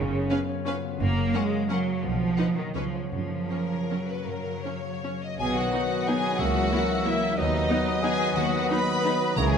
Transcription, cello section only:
0, 0, Header, 1, 2, 480
1, 0, Start_track
1, 0, Key_signature, 6, "major"
1, 0, Tempo, 345622
1, 1383, Time_signature, 3, 2, 24, 8
1, 3305, Tempo, 377834
1, 7144, Key_signature, 5, "major"
1, 7145, Tempo, 329852
1, 13223, End_track
2, 0, Start_track
2, 0, Title_t, "Cello section"
2, 0, Program_c, 0, 48
2, 0, Note_on_c, 0, 49, 69
2, 427, Note_off_c, 0, 49, 0
2, 1385, Note_on_c, 0, 58, 73
2, 1831, Note_off_c, 0, 58, 0
2, 1870, Note_on_c, 0, 56, 81
2, 2358, Note_off_c, 0, 56, 0
2, 2365, Note_on_c, 0, 54, 69
2, 2820, Note_off_c, 0, 54, 0
2, 2824, Note_on_c, 0, 53, 76
2, 3541, Note_off_c, 0, 53, 0
2, 3542, Note_on_c, 0, 51, 58
2, 3779, Note_off_c, 0, 51, 0
2, 3782, Note_on_c, 0, 53, 59
2, 4233, Note_off_c, 0, 53, 0
2, 4248, Note_on_c, 0, 53, 59
2, 5222, Note_off_c, 0, 53, 0
2, 5248, Note_on_c, 0, 54, 43
2, 6930, Note_off_c, 0, 54, 0
2, 7144, Note_on_c, 0, 47, 51
2, 7544, Note_off_c, 0, 47, 0
2, 8583, Note_on_c, 0, 37, 56
2, 8972, Note_off_c, 0, 37, 0
2, 10013, Note_on_c, 0, 39, 53
2, 10406, Note_off_c, 0, 39, 0
2, 11443, Note_on_c, 0, 39, 55
2, 11859, Note_off_c, 0, 39, 0
2, 12913, Note_on_c, 0, 37, 67
2, 13223, Note_off_c, 0, 37, 0
2, 13223, End_track
0, 0, End_of_file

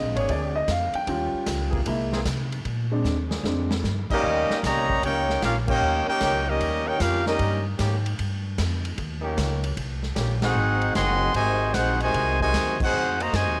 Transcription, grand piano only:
0, 0, Header, 1, 2, 480
1, 0, Start_track
1, 0, Tempo, 395257
1, 1297, Time_signature, 4, 2, 24, 8
1, 16516, End_track
2, 0, Start_track
2, 0, Title_t, "Grand piano"
2, 0, Program_c, 0, 0
2, 0, Note_on_c, 0, 56, 51
2, 0, Note_on_c, 0, 60, 47
2, 0, Note_on_c, 0, 62, 57
2, 0, Note_on_c, 0, 75, 70
2, 188, Note_off_c, 0, 75, 0
2, 193, Note_on_c, 0, 73, 78
2, 340, Note_off_c, 0, 73, 0
2, 366, Note_on_c, 0, 74, 69
2, 662, Note_off_c, 0, 74, 0
2, 674, Note_on_c, 0, 75, 86
2, 821, Note_off_c, 0, 75, 0
2, 858, Note_on_c, 0, 77, 71
2, 1148, Note_off_c, 0, 77, 0
2, 1156, Note_on_c, 0, 79, 97
2, 1253, Note_off_c, 0, 56, 0
2, 1254, Note_off_c, 0, 60, 0
2, 1256, Note_off_c, 0, 62, 0
2, 1302, Note_on_c, 0, 55, 46
2, 1311, Note_on_c, 0, 65, 54
2, 1313, Note_on_c, 0, 61, 48
2, 2212, Note_off_c, 0, 55, 0
2, 2217, Note_off_c, 0, 61, 0
2, 2217, Note_off_c, 0, 65, 0
2, 2218, Note_off_c, 0, 79, 0
2, 2264, Note_on_c, 0, 56, 47
2, 2275, Note_on_c, 0, 58, 54
2, 2278, Note_on_c, 0, 64, 57
2, 2626, Note_off_c, 0, 56, 0
2, 2631, Note_off_c, 0, 58, 0
2, 2633, Note_off_c, 0, 64, 0
2, 3541, Note_on_c, 0, 56, 51
2, 3546, Note_on_c, 0, 60, 40
2, 3555, Note_on_c, 0, 62, 56
2, 3814, Note_off_c, 0, 56, 0
2, 3816, Note_off_c, 0, 60, 0
2, 3821, Note_off_c, 0, 62, 0
2, 4196, Note_on_c, 0, 56, 45
2, 4202, Note_on_c, 0, 60, 46
2, 4203, Note_on_c, 0, 62, 49
2, 4477, Note_off_c, 0, 56, 0
2, 4480, Note_off_c, 0, 60, 0
2, 4480, Note_off_c, 0, 62, 0
2, 16516, End_track
0, 0, End_of_file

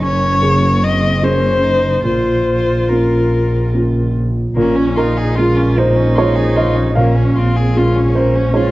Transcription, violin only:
0, 0, Header, 1, 2, 480
1, 0, Start_track
1, 0, Key_signature, -5, "minor"
1, 0, Tempo, 813008
1, 1216, Time_signature, 3, 2, 24, 8
1, 1216, Tempo, 835655
1, 2656, Tempo, 795756
1, 5157, End_track
2, 0, Start_track
2, 0, Title_t, "Violin"
2, 0, Program_c, 0, 40
2, 13, Note_on_c, 0, 73, 84
2, 495, Note_on_c, 0, 75, 81
2, 504, Note_off_c, 0, 73, 0
2, 729, Note_on_c, 0, 72, 82
2, 738, Note_off_c, 0, 75, 0
2, 1208, Note_off_c, 0, 72, 0
2, 1212, Note_on_c, 0, 72, 67
2, 1693, Note_on_c, 0, 70, 54
2, 1702, Note_off_c, 0, 72, 0
2, 2174, Note_off_c, 0, 70, 0
2, 2650, Note_on_c, 0, 58, 69
2, 2773, Note_on_c, 0, 61, 62
2, 2782, Note_off_c, 0, 58, 0
2, 2897, Note_on_c, 0, 65, 63
2, 2906, Note_off_c, 0, 61, 0
2, 3019, Note_on_c, 0, 68, 62
2, 3028, Note_off_c, 0, 65, 0
2, 3132, Note_on_c, 0, 65, 69
2, 3141, Note_off_c, 0, 68, 0
2, 3255, Note_on_c, 0, 61, 62
2, 3264, Note_off_c, 0, 65, 0
2, 3379, Note_on_c, 0, 58, 65
2, 3388, Note_off_c, 0, 61, 0
2, 3494, Note_on_c, 0, 61, 64
2, 3503, Note_off_c, 0, 58, 0
2, 3614, Note_on_c, 0, 65, 61
2, 3623, Note_off_c, 0, 61, 0
2, 3735, Note_on_c, 0, 68, 62
2, 3744, Note_off_c, 0, 65, 0
2, 3859, Note_on_c, 0, 65, 66
2, 3868, Note_off_c, 0, 68, 0
2, 3973, Note_on_c, 0, 61, 58
2, 3983, Note_off_c, 0, 65, 0
2, 4094, Note_off_c, 0, 61, 0
2, 4097, Note_on_c, 0, 58, 69
2, 4220, Note_on_c, 0, 61, 62
2, 4229, Note_off_c, 0, 58, 0
2, 4340, Note_on_c, 0, 65, 62
2, 4349, Note_off_c, 0, 61, 0
2, 4465, Note_on_c, 0, 68, 62
2, 4474, Note_off_c, 0, 65, 0
2, 4592, Note_on_c, 0, 65, 63
2, 4601, Note_off_c, 0, 68, 0
2, 4705, Note_on_c, 0, 61, 57
2, 4714, Note_off_c, 0, 65, 0
2, 4834, Note_on_c, 0, 58, 60
2, 4843, Note_off_c, 0, 61, 0
2, 4942, Note_on_c, 0, 61, 60
2, 4952, Note_off_c, 0, 58, 0
2, 5066, Note_on_c, 0, 65, 61
2, 5075, Note_off_c, 0, 61, 0
2, 5157, Note_off_c, 0, 65, 0
2, 5157, End_track
0, 0, End_of_file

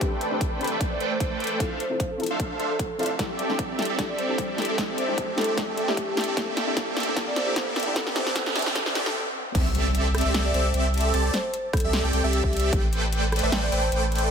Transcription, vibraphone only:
0, 0, Header, 1, 2, 480
1, 0, Start_track
1, 0, Tempo, 397351
1, 16, Time_signature, 4, 2, 24, 8
1, 17284, End_track
2, 0, Start_track
2, 0, Title_t, "Vibraphone"
2, 0, Program_c, 0, 11
2, 1105, Note_on_c, 0, 74, 86
2, 1194, Note_off_c, 0, 74, 0
2, 1214, Note_on_c, 0, 72, 83
2, 1298, Note_off_c, 0, 72, 0
2, 1345, Note_on_c, 0, 72, 72
2, 1416, Note_off_c, 0, 72, 0
2, 1823, Note_on_c, 0, 69, 87
2, 1986, Note_off_c, 0, 69, 0
2, 2175, Note_on_c, 0, 72, 86
2, 2545, Note_off_c, 0, 72, 0
2, 2545, Note_on_c, 0, 69, 92
2, 2751, Note_off_c, 0, 69, 0
2, 3266, Note_on_c, 0, 69, 88
2, 3336, Note_off_c, 0, 69, 0
2, 4942, Note_on_c, 0, 74, 86
2, 5032, Note_off_c, 0, 74, 0
2, 5054, Note_on_c, 0, 72, 87
2, 5138, Note_off_c, 0, 72, 0
2, 5181, Note_on_c, 0, 72, 75
2, 5254, Note_off_c, 0, 72, 0
2, 5663, Note_on_c, 0, 69, 86
2, 5993, Note_off_c, 0, 69, 0
2, 6013, Note_on_c, 0, 72, 88
2, 6384, Note_off_c, 0, 72, 0
2, 6493, Note_on_c, 0, 69, 90
2, 6864, Note_off_c, 0, 69, 0
2, 6971, Note_on_c, 0, 69, 89
2, 7077, Note_off_c, 0, 69, 0
2, 7104, Note_on_c, 0, 67, 88
2, 7310, Note_off_c, 0, 67, 0
2, 7344, Note_on_c, 0, 67, 95
2, 7747, Note_off_c, 0, 67, 0
2, 8784, Note_on_c, 0, 74, 91
2, 8873, Note_off_c, 0, 74, 0
2, 8894, Note_on_c, 0, 72, 90
2, 8978, Note_off_c, 0, 72, 0
2, 9023, Note_on_c, 0, 72, 77
2, 9095, Note_off_c, 0, 72, 0
2, 9503, Note_on_c, 0, 69, 93
2, 9666, Note_off_c, 0, 69, 0
2, 9853, Note_on_c, 0, 72, 85
2, 10222, Note_on_c, 0, 69, 93
2, 10224, Note_off_c, 0, 72, 0
2, 10429, Note_off_c, 0, 69, 0
2, 10943, Note_on_c, 0, 69, 91
2, 11015, Note_off_c, 0, 69, 0
2, 12624, Note_on_c, 0, 74, 90
2, 12713, Note_off_c, 0, 74, 0
2, 12735, Note_on_c, 0, 72, 90
2, 12818, Note_off_c, 0, 72, 0
2, 13346, Note_on_c, 0, 69, 92
2, 13674, Note_off_c, 0, 69, 0
2, 13694, Note_on_c, 0, 72, 85
2, 14065, Note_off_c, 0, 72, 0
2, 14174, Note_on_c, 0, 69, 91
2, 14545, Note_off_c, 0, 69, 0
2, 14656, Note_on_c, 0, 69, 93
2, 14760, Note_off_c, 0, 69, 0
2, 14784, Note_on_c, 0, 67, 96
2, 14990, Note_off_c, 0, 67, 0
2, 16465, Note_on_c, 0, 74, 89
2, 16553, Note_off_c, 0, 74, 0
2, 16575, Note_on_c, 0, 72, 91
2, 16659, Note_off_c, 0, 72, 0
2, 16703, Note_on_c, 0, 72, 76
2, 16775, Note_off_c, 0, 72, 0
2, 17185, Note_on_c, 0, 69, 90
2, 17284, Note_off_c, 0, 69, 0
2, 17284, End_track
0, 0, End_of_file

